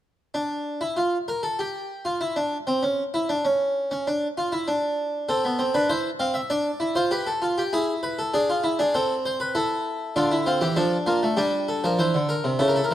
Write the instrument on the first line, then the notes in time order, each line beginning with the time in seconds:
harpsichord
0.34 D4
0.81 E4
0.97 F4
1.28 A#4
1.43 A4
1.59 G4
2.05 F4
2.21 E4
2.36 D4
2.67 C4
2.83 C#4
3.14 E4
3.29 D4
3.45 C#4
3.91 C#4
4.07 D4
4.38 F4
4.52 E4
4.68 D4
5.29 C4 A4
5.45 B3
5.59 C4
5.74 D4 B4
5.89 E4 C5
6.19 C4 F5
6.34 E5
6.50 D4 D5
6.80 E4
6.95 F4 C5
7.11 G4 B4
7.27 A4
7.42 F4
7.58 G4
7.73 E4 G#4
8.03 B4
8.19 A4
8.34 D4 G#4
8.50 F4
8.64 E4
8.79 D4 G#4
8.94 C4 A4
9.25 C5
9.40 B4
9.55 E4 A4
10.16 D3 D4 F4
10.31 E4
10.46 C4 F4
10.61 E3 G4
10.76 F3 D4 A4
11.06 A#3 F4
11.23 A3
11.37 G3 D4 G4
11.68 A4
11.84 F3 A#4
11.99 E3 C5
12.14 D3
12.29 A#4
12.44 C3
12.59 C#3 E4 A4
12.68 A#4
12.76 A4
12.84 A#4
12.91 E3